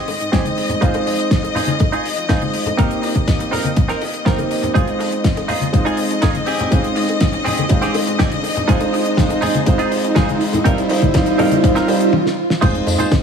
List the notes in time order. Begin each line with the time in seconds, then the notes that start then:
Already playing: G#3 C4 D#4 C5 D#5 G5, riser
0.08 G#1, open hi-hat, high bongo
0.20 G#2, muted clean electric guitar stroke, closed hi-hat
0.32 G#3 C4 D#4 G4 G#4 C5 G5, kick, snare, closed hi-hat
0.45 closed hi-hat, high conga
0.57 muted clean electric guitar stroke, open hi-hat, high bongo
0.69 muted clean electric guitar stroke, closed hi-hat, low conga
0.81 F1 G#3 C4 D#4 F4 G#4 C5, kick, closed hi-hat
0.94 closed hi-hat, high bongo
1.06 F2, muted clean electric guitar stroke, open hi-hat
1.18 muted clean electric guitar stroke, closed hi-hat
1.31 kick, snare, closed hi-hat
1.43 muted clean electric guitar stroke, closed hi-hat, high bongo
1.55 D#1 D#4 F4 G#4, open hi-hat, low conga
1.67 closed hi-hat, high conga
1.80 kick, closed hi-hat, high bongo
1.92 D#4 F4 G#4, closed hi-hat
2.05 F1, open hi-hat
2.16 F2, muted clean electric guitar stroke, closed hi-hat
2.29 G#3 C4 D#4 F4 G#4 C5, kick, snare, closed hi-hat, high bongo
2.42 closed hi-hat, high conga
2.53 muted clean electric guitar stroke, open hi-hat
2.66 muted clean electric guitar stroke, closed hi-hat, high bongo, low conga
2.77 C2 A#3 C4 D#4 G4 A#4 C5, kick, closed hi-hat
2.91 closed hi-hat
3.02 G1, muted clean electric guitar stroke, open hi-hat
3.15 muted clean electric guitar stroke, kick, closed hi-hat, high bongo
3.28 kick, snare, closed hi-hat
3.39 muted clean electric guitar stroke, closed hi-hat
3.51 A#1 C4 D#4 A#4, open hi-hat, high bongo, low conga
3.64 closed hi-hat, high conga
3.77 kick, closed hi-hat
3.88 C4 D#4 A#4, snare, closed hi-hat
4.01 G1, open hi-hat, high bongo
4.13 muted clean electric guitar stroke, closed hi-hat
4.25 A#3 C4 D#4 G4 A#4 C5, kick, snare, closed hi-hat
4.38 closed hi-hat, high bongo, high conga
4.50 muted clean electric guitar stroke, open hi-hat
4.62 muted clean electric guitar stroke, closed hi-hat, low conga
4.74 F1 G#3 C4 D#4 F4 G#4 C5 D#5, kick, closed hi-hat
4.87 closed hi-hat
4.99 F2, muted clean electric guitar stroke, open hi-hat, high bongo
5.12 muted clean electric guitar stroke, closed hi-hat
5.24 kick, snare, closed hi-hat
5.36 muted clean electric guitar stroke, closed hi-hat, high bongo
5.48 D#1 D#4 F4 G#4, open hi-hat, low conga
5.61 closed hi-hat, high conga
5.72 G#3 C4 D#4 F4 C5, kick, closed hi-hat
5.85 D#4 F4 G#4, closed hi-hat, high bongo
5.97 F1, open hi-hat
6.10 F2, muted clean electric guitar stroke, closed hi-hat
6.22 D#4 F4 G#4, kick, snare, closed hi-hat, high bongo
6.35 closed hi-hat, high conga
6.46 C4 G4 G#4, open hi-hat
6.59 closed hi-hat, low conga
6.71 G#1 G#3 C4 D#4 F4 C5, kick, closed hi-hat, high bongo
6.84 closed hi-hat
6.96 G#2, muted clean electric guitar stroke, open hi-hat
7.08 muted clean electric guitar stroke, closed hi-hat, high bongo
7.21 kick, snare, closed hi-hat
7.33 muted clean electric guitar stroke, closed hi-hat
7.45 D#1 C4 G4 G#4, open hi-hat, low conga
7.58 closed hi-hat, high bongo, high conga
7.69 G#3 C4 D#4 F4 C5, kick, closed hi-hat
7.82 C4 G4 G#4, snare, closed hi-hat
7.94 G#1, open hi-hat, high bongo
8.07 G#2, muted clean electric guitar stroke, closed hi-hat
8.19 C4 G4 G#4, kick, snare, closed hi-hat
8.32 closed hi-hat, high conga
8.43 muted clean electric guitar stroke, open hi-hat, high bongo
8.56 muted clean electric guitar stroke, closed hi-hat, low conga
8.68 F1 G#3 C4 D#4 F4 G#4 C5, kick, closed hi-hat
8.80 closed hi-hat, high bongo
8.92 F2, muted clean electric guitar stroke, open hi-hat
9.05 muted clean electric guitar stroke, closed hi-hat
9.17 G#3 C4 D#4 F4 C5, kick, snare, closed hi-hat
9.29 muted clean electric guitar stroke, closed hi-hat, high bongo
9.41 D#1 D#4 F4 G#4, open hi-hat, low conga
9.54 closed hi-hat, high conga
9.66 G#3 C4 D#4 F4 C5, kick, closed hi-hat, high bongo
9.78 D#4 F4 G#4, closed hi-hat
9.92 F1, open hi-hat
10.03 F2, muted clean electric guitar stroke, closed hi-hat
10.15 G#3 C4 D#4 F4 G#4 C5, kick, snare, closed hi-hat, high bongo
10.29 closed hi-hat, high conga
10.40 muted clean electric guitar stroke, open hi-hat
10.52 muted clean electric guitar stroke, closed hi-hat, high bongo, low conga
10.64 C2 G3 C4 D#4 F4 A#4 C5, kick, closed hi-hat
10.78 closed hi-hat
10.89 G1 G3 C4 D#4 F4 C5, muted clean electric guitar stroke, open hi-hat
11.02 muted clean electric guitar stroke, kick, closed hi-hat, high bongo, high conga
11.14 G3 C4 D#4 F4 C5, kick, snare, closed hi-hat
11.26 muted clean electric guitar stroke, closed hi-hat
11.38 A#1 G3 C4 D#4 F4 A#4 C5, open hi-hat, high bongo, low conga
11.51 closed hi-hat, high conga
11.63 G3 C4 D#4 F4 C5, kick, closed hi-hat
11.75 C4 D#4 A#4, snare, closed hi-hat
11.87 G1 G3 C4 D#4 F4 C5, open hi-hat, high bongo
12.00 muted clean electric guitar stroke, closed hi-hat
12.13 high tom
12.26 snare
12.50 snare
12.61 F1 G#3 C4 D#4 F4 G#4 C5 D#5, kick, closed hi-hat, crash, tambourine
12.75 closed hi-hat
12.86 F2, muted clean electric guitar stroke, open hi-hat, tambourine, high bongo
12.98 D#4 F4 G#4 C5, closed hi-hat, tambourine, low conga
13.11 kick, snare, closed hi-hat, tambourine